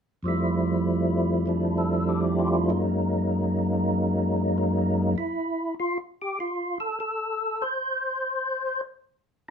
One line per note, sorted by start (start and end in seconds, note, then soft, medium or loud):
0.23 2.69 F2 soft
0.23 1.45 F3 soft
0.23 1.46 G3 soft
0.23 2.71 A3 soft
0.28 2.72 E4 soft
1.46 2.69 F3 soft
1.46 2.70 G3 soft
1.46 2.71 D4 soft
1.78 2.21 A4 soft
2.09 2.57 G4 soft
2.39 2.82 F4 soft
2.69 5.16 F#2 soft
2.69 5.16 F#3 soft
2.69 5.16 G#3 soft
2.69 5.16 A#3 soft
2.69 4.57 D#4 soft
4.58 5.14 D#4 medium
5.18 5.75 E4 medium
5.80 5.98 F4 medium
6.22 6.39 G4 medium
6.40 6.78 F4 medium
6.80 6.99 A4 medium
7.00 7.64 A4 medium
7.62 8.81 C5 medium